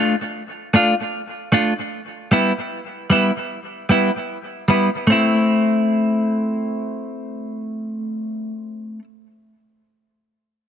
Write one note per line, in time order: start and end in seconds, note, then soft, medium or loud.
0.00 0.14 A3 medium
0.00 0.15 D4 medium
0.00 0.15 F4 medium
0.74 0.93 A3 medium
0.74 0.94 D4 medium
0.74 0.94 F4 medium
1.52 1.72 A3 medium
1.52 1.73 D4 medium
1.52 1.73 F4 medium
2.31 2.51 G3 medium
2.31 2.52 B3 medium
2.31 2.52 E4 medium
3.10 3.30 G3 medium
3.10 3.31 B3 medium
3.10 3.31 E4 medium
3.89 4.09 G3 medium
3.89 4.10 B3 medium
3.89 4.11 E4 medium
4.68 4.88 G3 medium
4.68 4.89 B3 medium
4.68 4.89 E4 medium
5.07 8.99 A3 medium
5.07 9.02 C4 medium
5.12 9.04 E4 medium